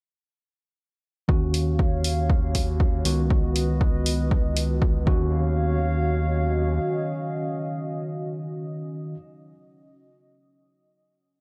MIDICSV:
0, 0, Header, 1, 6, 480
1, 0, Start_track
1, 0, Key_signature, -6, "minor"
1, 0, Tempo, 504202
1, 1226, Time_signature, 4, 2, 24, 8
1, 10859, End_track
2, 0, Start_track
2, 0, Title_t, "Analog synth pad"
2, 0, Program_c, 0, 89
2, 1226, Note_on_c, 0, 73, 76
2, 1226, Note_on_c, 0, 77, 83
2, 1227, Note_on_c, 0, 66, 82
2, 2889, Note_off_c, 0, 73, 0
2, 2890, Note_off_c, 0, 77, 0
2, 2906, Note_on_c, 0, 75, 89
2, 2907, Note_on_c, 0, 71, 71
2, 4790, Note_off_c, 0, 66, 0
2, 4807, Note_off_c, 0, 71, 0
2, 4807, Note_off_c, 0, 75, 0
2, 4826, Note_on_c, 0, 66, 84
2, 4826, Note_on_c, 0, 73, 75
2, 4826, Note_on_c, 0, 77, 91
2, 8714, Note_off_c, 0, 66, 0
2, 8714, Note_off_c, 0, 73, 0
2, 8715, Note_off_c, 0, 77, 0
2, 10859, End_track
3, 0, Start_track
3, 0, Title_t, "Ambient pad"
3, 0, Program_c, 1, 92
3, 1226, Note_on_c, 1, 61, 89
3, 1490, Note_on_c, 1, 66, 83
3, 1989, Note_on_c, 1, 75, 90
3, 2907, Note_on_c, 1, 59, 73
3, 3785, Note_off_c, 1, 61, 0
3, 4827, Note_off_c, 1, 59, 0
3, 4827, Note_off_c, 1, 66, 0
3, 4827, Note_off_c, 1, 75, 0
3, 4828, Note_on_c, 1, 61, 76
3, 4910, Note_on_c, 1, 66, 81
3, 5225, Note_on_c, 1, 75, 86
3, 8716, Note_off_c, 1, 61, 0
3, 8798, Note_off_c, 1, 66, 0
3, 9113, Note_off_c, 1, 75, 0
3, 10859, End_track
4, 0, Start_track
4, 0, Title_t, "Tine electric piano"
4, 0, Program_c, 2, 4
4, 1219, Note_on_c, 2, 51, 74
4, 1227, Note_on_c, 2, 61, 69
4, 1234, Note_on_c, 2, 66, 83
4, 2878, Note_off_c, 2, 51, 0
4, 2882, Note_off_c, 2, 61, 0
4, 2886, Note_off_c, 2, 66, 0
4, 2898, Note_on_c, 2, 51, 74
4, 2906, Note_on_c, 2, 59, 65
4, 2913, Note_on_c, 2, 66, 82
4, 4804, Note_off_c, 2, 51, 0
4, 4815, Note_on_c, 2, 51, 81
4, 4826, Note_off_c, 2, 59, 0
4, 4827, Note_off_c, 2, 66, 0
4, 4827, Note_on_c, 2, 61, 72
4, 4838, Note_on_c, 2, 66, 88
4, 8703, Note_off_c, 2, 51, 0
4, 8715, Note_off_c, 2, 61, 0
4, 8726, Note_off_c, 2, 66, 0
4, 10859, End_track
5, 0, Start_track
5, 0, Title_t, "Analog synth bass"
5, 0, Program_c, 3, 38
5, 1226, Note_on_c, 3, 39, 92
5, 2886, Note_off_c, 3, 39, 0
5, 2906, Note_on_c, 3, 37, 91
5, 4821, Note_off_c, 3, 37, 0
5, 4826, Note_on_c, 3, 39, 97
5, 6468, Note_off_c, 3, 39, 0
5, 10859, End_track
6, 0, Start_track
6, 0, Title_t, "Drums"
6, 1226, Note_on_c, 9, 36, 114
6, 1321, Note_off_c, 9, 36, 0
6, 1466, Note_on_c, 9, 46, 101
6, 1561, Note_off_c, 9, 46, 0
6, 1706, Note_on_c, 9, 36, 111
6, 1801, Note_off_c, 9, 36, 0
6, 1946, Note_on_c, 9, 46, 96
6, 2041, Note_off_c, 9, 46, 0
6, 2186, Note_on_c, 9, 36, 113
6, 2281, Note_off_c, 9, 36, 0
6, 2426, Note_on_c, 9, 36, 56
6, 2426, Note_on_c, 9, 46, 113
6, 2521, Note_off_c, 9, 36, 0
6, 2521, Note_off_c, 9, 46, 0
6, 2666, Note_on_c, 9, 36, 108
6, 2761, Note_off_c, 9, 36, 0
6, 2906, Note_on_c, 9, 46, 100
6, 3001, Note_off_c, 9, 46, 0
6, 3146, Note_on_c, 9, 36, 116
6, 3241, Note_off_c, 9, 36, 0
6, 3386, Note_on_c, 9, 46, 107
6, 3481, Note_off_c, 9, 46, 0
6, 3626, Note_on_c, 9, 36, 118
6, 3721, Note_off_c, 9, 36, 0
6, 3866, Note_on_c, 9, 46, 102
6, 3961, Note_off_c, 9, 46, 0
6, 4106, Note_on_c, 9, 36, 113
6, 4201, Note_off_c, 9, 36, 0
6, 4346, Note_on_c, 9, 46, 113
6, 4441, Note_off_c, 9, 46, 0
6, 4586, Note_on_c, 9, 36, 120
6, 4681, Note_off_c, 9, 36, 0
6, 4826, Note_on_c, 9, 36, 114
6, 4922, Note_off_c, 9, 36, 0
6, 10859, End_track
0, 0, End_of_file